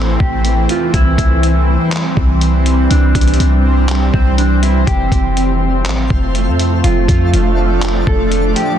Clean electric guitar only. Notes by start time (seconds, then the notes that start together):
Already playing: E4
0.20 G4
0.70 F4
0.94 E4
2.90 D4
4.13 C4
4.38 D4
4.63 E4
4.87 G4
6.84 F4
8.07 A4
8.56 G4